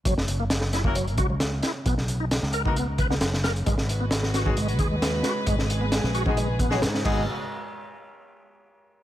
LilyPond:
<<
  \new Staff \with { instrumentName = "String section" } { \time 4/4 \key gis \minor \tempo 4 = 133 << { r1 | r1 | <gis b'>1~ | <gis b'>2.~ <gis b'>8 <gis fis' b'>8 |
r1 | } \\ { r1 | r1 | fis'1 | gis'2.~ gis'8 r8 |
r1 | } >> }
  \new Staff \with { instrumentName = "Horn section" } { \time 4/4 \key gis \minor r4. r16 <ais cis' e' fis' ais'>16 r2 | r4. r16 <ais b dis' fis' ais'>16 r2 | r4. r16 <gis b dis' fis' gis'>16 r2 | r4. r16 <gis b dis' fis' gis'>16 r8. <gis b dis' fis' gis'>16 r8 <gis b dis' fis' gis'>8 |
r1 | }
  \new Staff \with { instrumentName = "Tonewheel organ" } { \time 4/4 \key gis \minor fis16 r8 ais16 r8 e'16 ais16 fis16 r16 fis'16 fis16 r8 e'16 r16 | b16 r8 dis'16 r8 ais'16 dis'16 b16 r16 b'16 b16 r8 ais'16 r16 | gis16 r8 b16 r8 fis'16 cis'16 gis16 r16 gis'16 gis16 r8 fis'16 r16 | gis16 r8 b16 r8 fis'16 cis'16 gis16 r16 b16 fis16 r8 gis8 |
r1 | }
  \new Staff \with { instrumentName = "Fingered electric bass" } { \clef bass \time 4/4 \key gis \minor fis,,2~ fis,,8 cis,4 r8 | b,,4~ b,,16 cis,4.~ cis,16 fis,,4 | gis,,2~ gis,,8 dis,4 r8 | gis,,4~ gis,,16 ais,,4.~ ais,,16 gis,8 gis,,8 |
r1 | }
  \new DrumStaff \with { instrumentName = "Drums" } \drummode { \time 4/4 <hh bd>16 sn16 hh8 <hh sn>16 sn16 <hh sn>16 bd16 hh16 hh16 <hh bd>8 <hh sn>8 <hh sn>8 | <hh bd>16 sn16 hh8 <hh sn>16 sn16 hh16 bd16 hh8 <hh bd>16 sn16 <hh sn>16 sn16 <hh sn>16 hh16 | <hh bd>16 sn16 hh8 <hh sn>16 sn16 <hh sn>16 bd16 hh16 hh16 <hh bd>8 <hh sn>8 <hh sn>8 | <hh bd>16 sn16 hh8 <hh sn>16 sn16 hh16 bd16 hh8 <hh bd>16 sn16 <hh sn>16 sn16 <cymc bd>8 |
r4 r4 r4 r4 | }
>>